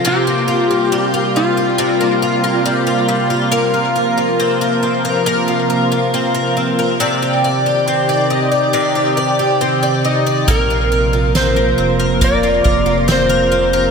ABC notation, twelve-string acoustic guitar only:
X:1
M:4/4
L:1/16
Q:1/4=69
K:Bb
V:1 name="Twelve-string acoustic guitar"
[C,F] B, F B, G, F G, F [C,F] B, F B, G, F G, F | [B,B] F B F C B C B [B,B] F B F C B C B | [C,d] G d G C d E d [C,d] G d G C d E d | [B,B] F B F C B C B [B,B] F B F C B C B |]